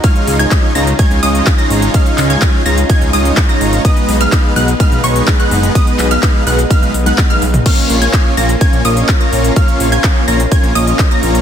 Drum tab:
CC |----------------|----------------|----------------|----------------|
RD |x---x---x---x---|x---x---x---x---|x---x---x---x---|x---x---x---x---|
HH |xxoxx-oxxxoxxxox|xxoxx-oxxxoxxxox|xxoxx-oxxxoxxxox|xxoxx-oxxxoxxxox|
CP |----x-------x---|--x-x-------x---|----x-------x---|--x-x-------x---|
T1 |----------------|----------------|----------------|------------oo--|
T2 |----------------|----------------|----------------|---------------o|
BD |o---o---o---o---|o---o---o---o---|o---o---o---o---|o---o---o---o---|

CC |x---------------|----------------|
RD |x---x---x---x---|x---x---x---x---|
HH |xxoxx-oxxxoxxxox|xxoxx-oxxxoxxxox|
CP |----x-------x---|----x-------x---|
T1 |----------------|----------------|
T2 |----------------|----------------|
BD |o---o---o---o---|o---o---o---o---|